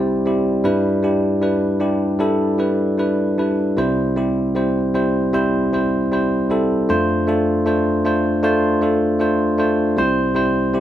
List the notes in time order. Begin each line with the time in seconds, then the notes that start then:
Already playing: C2 C3 G3 C4 E4 G4 C5 D5
0.26 G3 C4 E4 G4
0.64 G2 G3 D4 E4 B4
1.02 G3 D4 E4 G4
1.41 G3 D4 E4 B4
1.80 G3 D4 E4 G4
2.19 G3 D4 E4 A4
2.58 G3 D4 E4 B4
2.98 G3 D4 E4 B4
3.38 G3 D4 E4 B4
3.77 C2 C3 G3 C4 E4 C5
4.16 G3 C4 E4 G4
4.55 G3 C4 E4 C5
4.94 G3 C4 E4 C5
5.33 G3 C4 E4 C5
5.73 G3 C4 E4 C5
6.12 G3 C4 E4 C5
6.50 G3 C4 E4 A4
6.89 F2 A3 D4 F4 C5
7.27 A3 D4 F4 A4
7.66 A3 D4 F4 C5
8.05 A3 D4 F4 C5
8.43 A3 D4 F4 C5
8.81 A3 D4 F4 A4
9.20 A3 D4 F4 C5
9.58 A3 D4 F4 C5
9.97 C2 C3 G3 C4 E4 C5
10.35 G3 C4 E4 C5
10.73 G3 C4 E4 G4